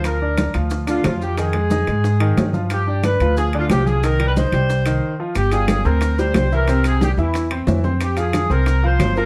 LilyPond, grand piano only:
\new Staff \with { instrumentName = "Grand piano" } { \time 4/4 \key g \phrygian \tempo 4 = 181 <f f'>8 <d' d''>4 <f f'>4 <d d'>8 <f f'>4 | <ees ees'>8 <aes aes'>8 <ees' ees''>8 <aes aes'>4 <ees ees'>4 <f f'>8~ | <f f'>8 <d' d''>4 <f f'>4 <d d'>8 <f f'>4 | <ees ees'>8 <g g'>8 <ees' ees''>8 <g g'>4 <ees ees'>4 <f f'>8 |
r8 <g f' g''>4 <c' c'' c'''>4 <g g' g''>4 <e e' e''>8 | <c c' c''>4 <g g' g''>8 <e e' e''>4 <c' c'' c'''>8 <e e' e''>8 <c' c'' c'''>8~ | <c' c'' c'''>8 <f f' f''>4 <c' c'' c'''>4 <f f' f''>4 <f f' f''>8 | }